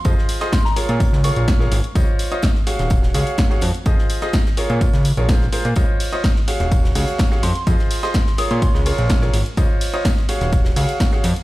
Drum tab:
RD |----------------|----------------|----------------|--x---x---x---x-|
HH |x-oxx-oxx-oxx-ox|x-oxx-oxx-oxx-ox|x-oxx-oxxxoxx-ox|x-oxx-oxx-oxx-ox|
TB |x-x-x-x-x-x-x-x-|x-x-x-x-x-x-x-x-|x-x-x-x-x-x-x-x-|x-x-x-x-x-x-x-x-|
SD |-o-ooo---o--oo--|----oo-o-o--oo--|-o-ooo---o--oo--|----oo-o-o--oo--|
BD |o---o---o---o---|o---o---o---o---|o---o---o---o---|o---o---o---o---|

RD |--x---x---x---x-|--x---x---x---x-|
HH |x-oxx-oxx-oxx-ox|x-oxx-oxx-oxx-ox|
TB |x-x-x-x-x-x-x-x-|x-x-x-x-x-x-x-x-|
SD |-o-ooo---o--oo--|----oo-o-o--oo--|
BD |o---o---o---o---|o---o---o---o---|